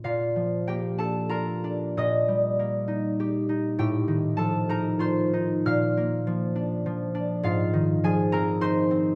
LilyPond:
<<
  \new Staff \with { instrumentName = "Harp" } { \time 3/4 \key bes \major \tempo 4 = 100 << { <f' bes' f''>4 <g' g''>8 <a' a''>8 <bes' bes''>4 | <ees'' ees'''>2. | <g' g''>4 <a' a''>8 <bes' bes''>8 <c'' c'''>4 | <f'' f'''>2. |
\key f \dorian <f' f''>4 <aes' aes''>8 <bes' bes''>8 <c'' c'''>4 | } \\ { <bes d'>2.~ | <bes d'>2. | r2. | r2. |
r2. | } >> }
  \new Staff \with { instrumentName = "Harp" } { \time 3/4 \key bes \major bes,8 f8 bes8 d'8 f'8 d'8 | bes,8 g8 bes8 ees'8 g'8 ees'8 | a,8 ees8 f8 ees'8 f'8 ees'8 | bes,8 bes8 f8 d'8 f8 d'8 |
\key f \dorian aes,8 ees8 f8 c'8 ees'8 c'8 | }
>>